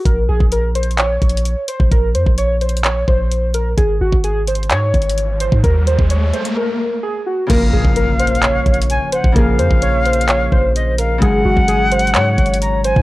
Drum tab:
CC |------------------------------------------------|------------------------------------------------|------------------------------------------------|------------------------------------------------|
HH |x-----------x-----x-x-x-x-----x-x-x-x-----x-----|x-----x-----x-----x-x-x-x-----------x-----x-----|x-----------x-----x-x-x-x-----x-x-x-x-----x-----|x-----x-----x-----x--x--------------------------|
CP |------------------------x-----------------------|------------------------x-----------------------|------------------------x-----------------------|------------------------------------------------|
BD |o--------o--------------------o--------------o--|o--------o--------------------o-----------------|o--------o--------------------o--------------o--|o--------o--------------------------------------|

CC |x-----------------------------------------------|------------------------------------------------|------------------------------------------------|
HH |x-----------x-----x-x-x-x-----x-x-x-x-----x-----|x-----x-----x-----x-x-x-x-----------x-----x-----|x-----------x-----x-x-x-x-----x-x-x-x-----x-----|
CP |------------------------x-----------------------|------------------------x-----------------------|------------------------x-----------------------|
BD |o--------o--------------------o--------------o--|o--------o--------------------o-----------------|o--------o--------------------o--------------o--|